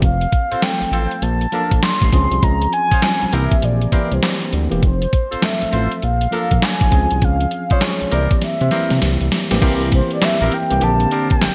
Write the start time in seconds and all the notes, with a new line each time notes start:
0.02 F1 F5, kick, closed hi-hat
0.21 closed hi-hat
0.32 kick, closed hi-hat
0.51 A1 C4 F4 A4 C5, closed hi-hat
0.62 F3 A3 C4 A4 G5, snare, clap, closed hi-hat
0.81 A1, closed hi-hat
0.92 A1 C4 F4 A4 C5, closed hi-hat
1.11 closed hi-hat
1.22 A#1 A5, closed hi-hat
1.41 closed hi-hat
1.52 F3 A#3 D4 F4 A4 A#4, closed hi-hat
1.71 A#1, kick, closed hi-hat
1.83 C6, snare, clap, closed hi-hat
2.01 A1, kick, closed hi-hat
2.12 C#2 F3 C4 C#4 G#4, kick, closed hi-hat
2.31 C2, closed hi-hat
2.43 C#2 A#5, kick, closed hi-hat
2.62 closed hi-hat
2.73 G#5, closed hi-hat
2.91 C2 C#4 F4 G#4 C5, kick, closed hi-hat
3.02 F3 G3 C4 C#4, snare, clap, closed hi-hat
3.21 C2, closed hi-hat
3.32 C2 E3 A#3 C4 E4 G4 A#4 E5, closed hi-hat
3.51 kick, closed hi-hat
3.62 A#1 D5, closed hi-hat
3.82 closed hi-hat
3.92 E3 A#3 C4 E4 G4 A#4, kick, closed hi-hat
4.12 C2 C5, closed hi-hat
4.23 snare, clap, closed hi-hat
4.41 closed hi-hat
4.53 D2, closed hi-hat
4.70 E1 E3 A#3 C4 G4, closed hi-hat
4.83 F1 C5, kick, closed hi-hat
5.02 closed hi-hat
5.13 kick, closed hi-hat
5.31 A1 C4 F4 A4 C5, closed hi-hat
5.42 F3 A3 C4 A4 E5, snare, clap, closed hi-hat
5.62 A1, closed hi-hat
5.72 A1 C4 F4 A4 C5, closed hi-hat
5.91 closed hi-hat
6.02 A#1 F5, closed hi-hat
6.21 closed hi-hat
6.31 F3 A#3 D4 F4 A4 A#4, closed hi-hat
6.51 A#1, kick, closed hi-hat
6.62 G#5, snare, clap, closed hi-hat
6.81 A1, kick, closed hi-hat
6.91 C#2 F3 C4 C#4 G#4, kick, closed hi-hat
7.11 C2, closed hi-hat
7.22 C#2 F5, kick, closed hi-hat
7.40 closed hi-hat
7.51 closed hi-hat
7.70 C2 C#4 F4 G#4 C5 C#5, kick, closed hi-hat
7.81 F3 G#3 C#4 G#4, snare, clap, closed hi-hat
8.01 C2, closed hi-hat
8.11 C2 E3 A#3 C4 E4 G4 A#4 D5, closed hi-hat
8.31 kick, closed hi-hat
8.42 E5, snare, closed hi-hat
8.61 C3, closed hi-hat
8.71 E3 A#3 C4 E4 G4 A#4, snare, closed hi-hat
8.90 C3, snare, closed hi-hat
9.02 C2, snare, closed hi-hat
9.21 C2, closed hi-hat
9.32 snare, closed hi-hat
9.50 A1 E3 A#3 C4 G4, snare, closed hi-hat
9.61 C2 E3 A#3 C4 E4 G4 A#4, kick, closed hi-hat, crash
9.81 closed hi-hat
9.92 C5, kick, closed hi-hat
10.10 D5, closed hi-hat
10.22 E3 A#3 C4 G4 E5, snare, clap, closed hi-hat
10.40 A#1 C4 E4 G4 A#4, closed hi-hat
10.52 G5, closed hi-hat
10.70 C2 E3 A#3 C4 G4, closed hi-hat
10.81 A#1 D3 A#3 C4 G4 A5, closed hi-hat
11.00 closed hi-hat
11.11 C4 D4 G4 A#4, closed hi-hat
11.30 G5, kick, closed hi-hat
11.42 G1, snare, clap, closed hi-hat